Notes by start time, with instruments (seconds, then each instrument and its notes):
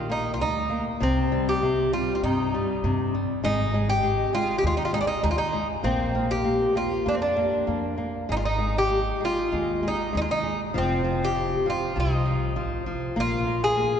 Already playing: upright bass A#1, nylon-string guitar D#4
0.10 nylon-string guitar A#3, bouzouki D#4
0.34 bouzouki F4
0.40 upright bass D2, nylon-string guitar G3, bouzouki D#4
0.70 nylon-string guitar A#3
1.00 upright bass C2, nylon-string guitar C3, bouzouki C4
1.32 nylon-string guitar G3
1.49 bouzouki G4
1.62 nylon-string guitar C3
1.93 nylon-string guitar G3, bouzouki F4
2.15 bouzouki F4
2.23 upright bass G2, nylon-string guitar C3, bouzouki D#4
2.54 nylon-string guitar G3
2.84 upright bass G2, nylon-string guitar C3
3.15 nylon-string guitar G3
3.44 upright bass G#1, nylon-string guitar G#3, bouzouki D#4
3.74 nylon-string guitar G#3
3.90 bouzouki G4
4.03 nylon-string guitar G#3
4.33 nylon-string guitar G#3, bouzouki F4
4.58 bouzouki G4
4.63 upright bass D#2, nylon-string guitar G#3
4.67 bouzouki F4
4.77 bouzouki D#4
4.85 bouzouki F4
4.93 nylon-string guitar G#3, bouzouki D#4
5.01 bouzouki D4
5.07 bouzouki D#4
5.23 upright bass D#2, nylon-string guitar G#3, bouzouki D#4
5.31 bouzouki F4
5.38 bouzouki D#4
5.53 nylon-string guitar G#3
5.83 upright bass A#1, nylon-string guitar A#3, bouzouki C4
6.15 nylon-string guitar A#3
6.31 bouzouki G4
6.45 nylon-string guitar A#3
6.75 nylon-string guitar A#3, bouzouki F4
7.06 upright bass F2, nylon-string guitar A#3, bouzouki D4
7.15 bouzouki C4
7.22 bouzouki D4
7.36 nylon-string guitar A#3
7.67 upright bass F2, nylon-string guitar A#3
7.98 nylon-string guitar A#3
8.29 upright bass G#1, nylon-string guitar G#3, bouzouki D#4
8.37 bouzouki F4
8.45 bouzouki D#4
8.59 nylon-string guitar G#3
8.78 bouzouki G4
8.90 nylon-string guitar G#3
9.21 nylon-string guitar G#3
9.25 bouzouki F4
9.52 upright bass D#2, nylon-string guitar G#3
9.83 nylon-string guitar G#3
9.88 bouzouki D#4
10.13 upright bass D#2, nylon-string guitar G#3
10.17 bouzouki D#4
10.22 bouzouki F4
10.31 bouzouki D#4
10.43 nylon-string guitar G#3
10.74 upright bass F1, nylon-string guitar F3, bouzouki C4
11.04 nylon-string guitar F3
11.25 bouzouki G4
11.35 nylon-string guitar F3
11.66 nylon-string guitar F3, bouzouki F4
11.96 upright bass C2, nylon-string guitar F3
12.00 bouzouki D#4
12.26 nylon-string guitar F3
12.56 upright bass A1, nylon-string guitar F3
12.86 nylon-string guitar F3
13.16 upright bass A#1, nylon-string guitar A#3
13.20 bouzouki F4
13.47 nylon-string guitar A#3
13.64 bouzouki G#4
13.76 nylon-string guitar A#3